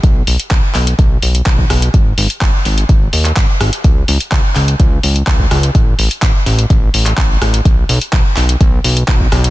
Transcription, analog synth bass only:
X:1
M:4/4
L:1/8
Q:1/4=126
K:G#phr
V:1 name="Analog synth bass" clef=bass
B,,, B,,, B,,, B,,, B,,, B,,, B,,, B,,, | G,,, G,,, G,,, G,,, G,,, D,, G,,, G,,, | C,, C,, C,, C,, C,, C,, C,, C,, | A,,, A,,, A,,, A,,, A,,, A,,, A,,, A,,, |
B,,, B,,, B,,, B,,, B,,, B,,, B,,, B,,, |]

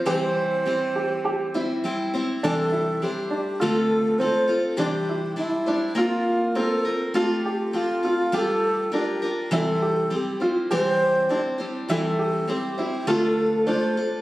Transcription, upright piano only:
X:1
M:4/4
L:1/8
Q:1/4=101
K:Cmix
V:1 name="Upright piano"
G z2 G G E2 z | D E2 D F2 C2 | D E2 D F2 C2 | F G2 F G2 D2 |
E G2 F G2 D2 | E G2 E F2 D2 |]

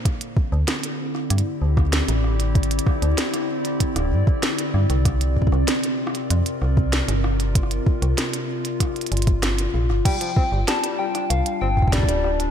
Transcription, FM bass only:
X:1
M:4/4
L:1/16
Q:1/4=96
K:Cmix
V:1 name="FM bass" clef=bass
z3 D,, z4 G,, z D,,3 A,,,3- | A,,,2 z D,, z4 z D,,, G,, z3 G,, C,,- | C,,3 C,, z4 F,, z C,,3 G,,,3- | G,,,2 z C,, z6 G,,,4 B,,, G,,, |
z3 G,,, z4 C,, z G,,,3 D,,,3 |]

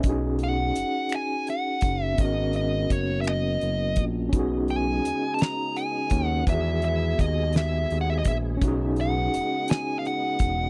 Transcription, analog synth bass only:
X:1
M:6/8
L:1/8
Q:3/8=56
K:B
V:1 name="Analog synth bass" clef=bass
B,,,2 F,,, z2 F,,, | G,,,2 F,,,2 F,,, A,,, | B,,,2 D,, z2 D,, | E,,2 D,,2 D,, A,,, |
B,,,2 E,,, z2 E,,, |]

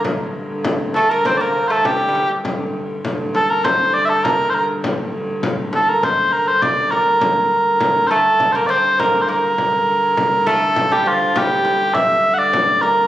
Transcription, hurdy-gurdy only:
X:1
M:2/4
L:1/8
Q:1/4=101
K:Gm
V:1 name="Hurdy-gurdy" clef=bass
[G,,D,]4- | [G,,D,]4 | [G,,D,]4- | [G,,D,]4- |
[G,,D,]4- | [G,,D,]4 | [G,,D,]4- | [G,,D,]4- |
[G,,D,]4- | [G,,D,]4 | [G,,D,]4 |]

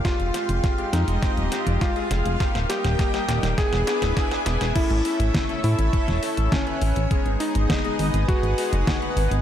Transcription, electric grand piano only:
X:1
M:4/4
L:1/8
Q:1/4=102
K:Fdor
V:1 name="Electric grand piano"
F3 E3 F2- | F G3 ^G4 | [K:Alyd] E3 E3 C2- | C D3 F4 |]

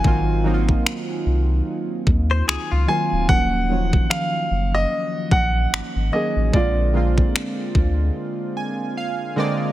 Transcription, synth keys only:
X:1
M:4/4
L:1/8
Q:"Swing 16ths" 1/4=74
K:Ebdor
V:1 name="Synth keys"
[E,G,B,CF] [E,G,B,CEF]4 z2 [E,G,B,CF] | [E,F,G,B,D] [E,F,G,B,D]4 z2 [E,G,B,DA] | [=D,A,B,CF] [D,A,B,CF]4 a f [D,A,B,C=de] |]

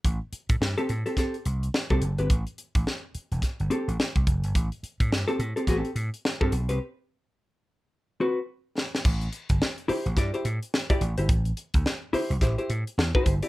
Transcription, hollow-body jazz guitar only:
X:1
M:4/4
L:1/16
Q:"Swing 16ths" 1/4=107
K:Ador
V:1 name="Hollow-body jazz guitar"
z4 z [CGA] z [CGA] [CGA] z4 [CGA] z [CGB] | z8 z2 [CGA] z4 z | z4 z [CGA] z [CGA] [CGA] z4 [CGA] z [CGB] | z8 z2 [CFB] z4 z |
z6 [EGc] z [EGd] [EGc] z3 [EGd] z [EGc] | z6 [EGc] z [EGc] [EGc] z3 [EGc] z [EGd] |]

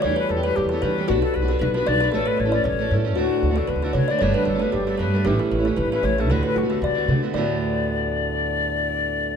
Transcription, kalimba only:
X:1
M:4/4
L:1/8
Q:"Swing" 1/4=230
K:D
V:1 name="Kalimba"
c B A B G A B2 | F A B A B B d B | A B c d c3 z | F3 A B A c d |
c B A B G A B2 | G A B A B B c A | B B F A d3 z | d8- |
d8 |]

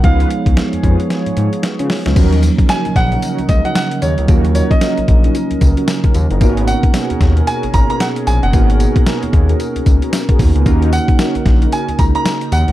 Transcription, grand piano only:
X:1
M:4/4
L:1/16
Q:"Swing 16ths" 1/4=113
K:Ebm
V:1 name="Grand piano"
f12 z4 | z4 a2 g4 e g g2 d2- | d2 d e8- e3 z2 | z2 g6 a2 b b g2 a g- |
g8- g3 z4 z | z2 g6 a2 b b3 g2 |]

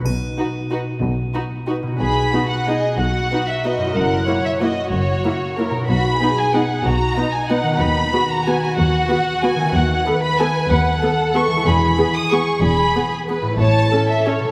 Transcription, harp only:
X:1
M:3/4
L:1/8
Q:1/4=185
K:B
V:1 name="Harp"
[B,,DFB]6- | [B,,DFB]6 | [B,,DFB]6- | [B,,DFB]6 |
[F,,EFA]6- | [F,,EFA]6 | [B,,DFB]6- | [B,,DFB]6 |
[D,B,FB]6- | [D,B,FB]6 | [K:E] [D,A,FB]6- | [D,A,FB]6 |
[E,G,EB]6- | [E,G,EB]6 | [A,,A,Ec]6 |]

